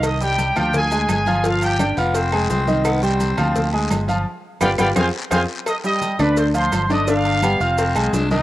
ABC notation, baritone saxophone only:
X:1
M:4/4
L:1/8
Q:1/4=170
K:Cm
V:1 name="Baritone saxophone"
z8 | z3 =B, C2 C2 | =B, C4 z3 | z2 =B, B, C z C z |
z8 | z2 =B, C C2 D E |]